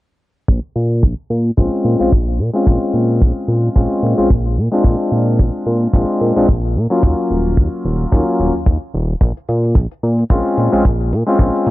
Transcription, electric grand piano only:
1.57 1.96 G#3 medium
1.57 1.96 C4 medium
1.57 1.97 C#4 medium
1.57 1.97 F4 medium
1.99 2.08 G#3 medium
1.99 2.08 C4 medium
1.99 2.08 C#4 medium
1.99 2.09 F4 medium
2.53 3.72 G#3 medium
2.53 3.73 C4 medium
2.53 3.73 C#4 medium
2.53 3.73 F4 medium
3.75 4.14 G#3 medium
3.75 4.15 C4 medium
3.75 4.15 C#4 medium
3.75 4.15 F4 medium
4.17 4.26 G#3 medium
4.17 4.26 C4 medium
4.17 4.27 C#4 medium
4.17 4.27 F4 medium
4.72 5.91 G#3 medium
4.72 5.91 C4 medium
4.72 5.91 D4 medium
4.72 5.92 F4 medium
5.94 6.33 G#3 medium
5.94 6.33 C4 medium
5.94 6.33 D4 medium
5.94 6.33 F4 medium
6.36 6.45 G#3 medium
6.36 6.45 C4 medium
6.36 6.45 D4 medium
6.36 6.45 F4 medium
6.90 8.09 F#3 medium
6.90 8.09 A#3 medium
6.90 8.09 C#4 medium
6.90 8.10 F4 medium
8.12 8.51 F#3 medium
8.12 8.51 A#3 medium
8.12 8.51 C#4 medium
8.12 8.51 F4 medium
10.30 10.69 G#3 medium
10.30 10.69 C4 medium
10.30 10.69 C#4 medium
10.30 10.69 F4 medium
10.72 10.81 G#3 medium
10.72 10.81 C4 medium
10.72 10.81 C#4 medium
10.72 10.81 F4 medium
11.26 11.71 G#3 medium
11.26 11.71 C4 medium
11.26 11.71 C#4 medium
11.26 11.71 F4 medium

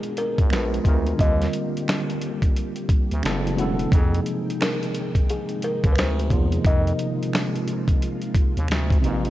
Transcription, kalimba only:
0.00 0.19 G#4 medium
0.18 0.53 A#4 medium
0.52 1.22 B4 medium
1.21 2.52 D#5 medium
4.61 5.31 A#4 medium
5.30 5.61 G#4 medium
5.64 5.93 A#4 medium
5.92 5.97 B4 medium
5.98 6.68 C5 medium
6.67 7.98 D#5 loud

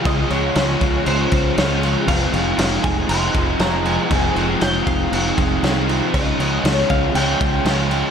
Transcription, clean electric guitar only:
0.07 0.32 D#5 loud
0.31 1.03 C#5 medium
1.08 1.58 C5 medium
1.59 1.94 C#5 medium
2.08 2.83 F5 loud
2.84 3.09 G#5 loud
3.09 3.61 C6 loud
3.61 3.86 A#5 loud
3.87 4.34 G#5 medium
4.62 4.88 G5 loud
4.87 5.84 F5 loud
6.14 6.72 D#5 loud
6.72 6.92 C#5 loud
6.90 7.15 F5 loud
7.15 8.11 G5 loud

